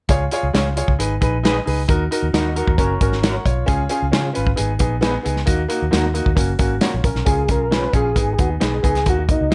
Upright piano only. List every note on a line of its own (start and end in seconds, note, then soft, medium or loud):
0.09 0.22 F4 medium
0.09 0.23 G#4 medium
0.09 0.23 C#5 loud
0.32 0.45 F4 medium
0.32 0.45 G#4 medium
0.32 0.46 C#5 loud
0.53 0.67 F4 medium
0.53 0.67 G#4 medium
0.53 0.68 C#5 medium
0.76 0.90 F4 medium
0.76 0.90 G#4 medium
0.76 0.90 C#5 medium
0.99 1.12 D#4 medium
0.99 1.12 G#4 medium
0.99 1.13 B4 medium
1.21 1.34 D#4 medium
1.21 1.35 G#4 medium
1.21 1.35 B4 medium
1.44 1.57 D#4 loud
1.44 1.58 G#4 medium
1.44 1.58 B4 loud
1.66 1.79 D#4 medium
1.66 1.80 G#4 medium
1.66 1.80 B4 medium
1.88 2.02 D#4 medium
1.88 2.02 F#4 medium
1.88 2.02 A#4 loud
2.11 2.24 D#4 medium
2.11 2.25 F#4 medium
2.11 2.25 A#4 loud
2.34 2.47 D#4 medium
2.34 2.48 F#4 medium
2.34 2.48 A#4 medium
2.56 2.69 D#4 medium
2.56 2.69 F#4 medium
2.56 2.70 A#4 medium
2.78 2.92 C#4 medium
2.78 2.92 F#4 medium
2.78 2.92 A#4 medium
3.01 3.14 C#4 medium
3.01 3.14 F#4 medium
3.01 3.15 A#4 medium
3.24 3.45 A#4 medium
3.24 3.45 F#5 medium
3.46 3.66 F4 medium
3.46 3.88 C#5 medium
3.66 3.81 C#4 loud
3.66 3.81 F4 medium
3.66 3.81 G#4 loud
3.90 4.03 C#4 loud
3.90 4.04 F4 medium
3.90 4.04 G#4 loud
4.12 4.26 C#4 medium
4.12 4.26 F4 medium
4.12 4.26 G#4 medium
4.33 4.48 C#4 medium
4.33 4.48 F4 medium
4.33 4.48 B4 medium
4.56 4.70 B3 medium
4.56 4.70 D#4 medium
4.56 4.71 G#4 medium
4.79 4.93 B3 medium
4.79 4.93 D#4 medium
4.79 4.94 G#4 medium
5.01 5.15 B3 loud
5.01 5.16 D#4 medium
5.01 5.16 G#4 loud
5.23 5.38 B3 medium
5.23 5.38 D#4 medium
5.23 5.38 G#4 medium
5.46 5.60 A#3 medium
5.46 5.60 D#4 medium
5.46 5.61 F#4 loud
5.68 5.83 A#3 medium
5.68 5.83 D#4 medium
5.68 5.83 F#4 loud
5.91 6.05 A#3 medium
5.91 6.05 D#4 medium
5.91 6.06 F#4 medium
6.14 6.28 A#3 medium
6.14 6.28 D#4 medium
6.14 6.28 F#4 medium
6.35 6.50 A#3 medium
6.35 6.50 C#4 medium
6.35 6.51 F#4 medium
6.59 6.73 A#3 medium
6.59 6.73 C#4 medium
6.59 6.73 F#4 medium
6.81 7.03 F4 medium
6.81 7.03 C#5 medium
7.04 7.24 C#4 medium
7.04 7.47 A#4 medium
7.25 7.40 C#4 medium
7.25 7.40 F4 medium
7.25 7.41 G#4 medium
7.49 7.62 C#4 medium
7.49 7.63 F4 medium
7.49 7.63 G#4 medium
7.71 7.85 C#4 medium
7.71 7.85 F4 medium
7.71 7.86 G#4 medium
7.93 8.07 C#4 medium
7.93 8.07 F4 medium
7.93 8.08 G#4 medium
8.15 8.30 B3 medium
8.15 8.30 D#4 medium
8.15 8.31 G#4 medium
8.38 8.52 B3 medium
8.38 8.52 D#4 medium
8.38 8.53 G#4 medium
8.60 8.74 B3 medium
8.60 8.75 D#4 medium
8.60 8.75 G#4 medium
8.83 8.97 B3 medium
8.83 8.97 D#4 medium
8.83 8.98 G#4 loud
9.06 9.20 A#3 medium
9.06 9.20 D#4 medium
9.06 9.21 F#4 medium
9.28 9.42 A#3 medium
9.28 9.43 D#4 medium
9.28 9.43 F#4 medium
9.51 9.54 A#3 medium
9.51 9.54 D#4 medium